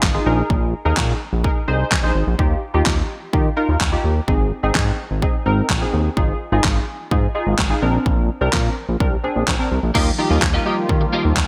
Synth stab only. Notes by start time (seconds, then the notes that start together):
0.14 D#4 F4 G#4
0.26 D#4 G#4 A#4
0.85 D#4 G#4 A#4
1.44 D#4 G#4 A#4
1.68 D#4 G#4 C5
2.03 D#4 G#4 C5
2.39 D#4 F4 G4
2.74 D#4 F4 G4
3.33 D#4 F4 G4
3.57 D#4 F4 A#4
3.92 D#4 F4 G4
4.28 C4 D#4 G#4
4.63 C4 D#4 G#4
5.22 C4 D#4 G#4
5.46 C4 D#4 A#4
5.81 C4 D#4 G#4
6.17 D#4 F4 G#4
6.52 D#4 F4 G#4
7.11 D#4 F4 G#4
7.35 D#4 F4 G#4
7.70 D#4 F4 G#4
7.82 C4 D4 A#4
8.41 C4 D4 A#4
9.00 C4 D4 A#4
9.24 C4 D4 G#4
9.59 C4 D4 A#4
9.95 D#4 F4 G4
10.18 D#4 F4 G4
10.65 D#4 F4 G4